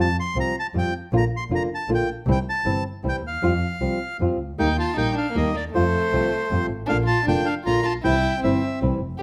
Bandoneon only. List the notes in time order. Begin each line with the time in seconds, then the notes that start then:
0.01 A5
0.20 C6
0.40 A#5
0.59 A5
0.78 G5
1.17 A#5
1.37 C6
1.55 A#5
1.75 A5
1.95 G5
2.32 G5
2.49 A5
3.09 G5
3.27 F5
4.59 G5
4.80 A5
4.98 G5
5.18 F5
5.37 D#5
5.56 D5
5.75 C5
6.89 F5
7.07 A5
7.28 G5
7.46 F5
7.66 A#5
7.85 A5
8.04 G5
8.44 E5